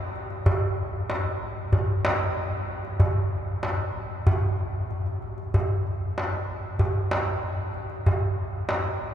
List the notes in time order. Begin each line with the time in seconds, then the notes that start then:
0.16 darbuka ka
0.30 darbuka ka
0.46 darbuka dum
1.10 darbuka tek
1.73 darbuka dum
2.05 darbuka tek
2.68 darbuka ka
2.85 darbuka ka
3.00 darbuka dum
3.63 darbuka tek
4.27 darbuka dum
4.43 darbuka ka
4.91 darbuka ka
5.06 darbuka ka
5.22 darbuka ka
5.38 darbuka ka
5.54 darbuka dum
5.87 darbuka ka
6.18 darbuka tek
6.34 darbuka ka
6.79 darbuka dum
7.11 darbuka tek
7.74 darbuka ka
7.90 darbuka ka
8.06 darbuka dum
8.69 darbuka tek